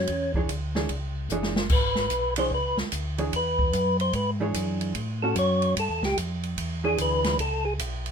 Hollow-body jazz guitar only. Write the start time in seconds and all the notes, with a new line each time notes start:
0.36 E3 D4 G#4 C#5
0.76 E3 D4 G#4 C#5
1.32 E3 D4 G#4 C#5
2.38 E3 D4 G#4 C#5
3.18 E3 D4 G#4 C#5
4.40 E3 D4 G#4 C#5
5.24 C#4 F#4
6.84 E3 D4 G#4 C#5